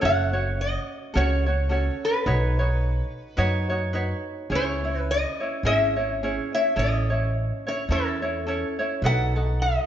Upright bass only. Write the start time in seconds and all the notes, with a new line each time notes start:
0.03 F#1
1.15 C#2
2.26 B1
3.38 F#2
4.50 C#2
5.63 G#1
6.76 A1
7.89 E2
9.02 B1